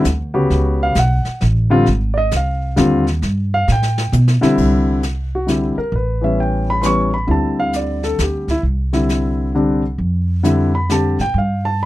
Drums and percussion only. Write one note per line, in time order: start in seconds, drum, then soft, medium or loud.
0.05 snare medium
0.05 hi-hat pedal medium
0.50 brush sweep soft
0.50 snare soft
0.95 snare medium
0.95 hi-hat pedal medium
1.25 snare soft
1.41 snare soft
1.86 brush sweep soft
1.86 snare soft
2.31 snare medium
2.31 hi-hat pedal medium
2.76 snare medium
2.76 hi-hat pedal medium
3.07 snare soft
3.22 brush sweep medium
3.22 snare soft
3.68 snare medium
3.82 snare medium
3.98 snare medium
4.13 hi-hat pedal medium
4.13 mid tom medium
4.28 snare medium
4.43 snare medium
4.58 brush sweep soft
4.58 kick medium
4.58 crash medium
5.03 snare medium
5.03 hi-hat pedal soft
5.48 snare medium
5.48 hi-hat pedal medium
5.93 brush sweep soft
6.83 snare medium
6.83 hi-hat pedal medium
7.29 brush sweep soft
7.73 snare medium
7.73 hi-hat pedal soft
8.03 snare soft
8.18 snare medium
8.18 hi-hat pedal soft
8.48 kick soft
8.48 snare soft
8.64 brush sweep soft
8.93 snare soft
9.09 snare medium
9.09 hi-hat pedal soft
9.99 brush sweep soft
10.44 snare medium
10.44 hi-hat pedal medium
10.89 snare medium
10.89 hi-hat pedal medium
11.19 snare soft
11.34 brush sweep soft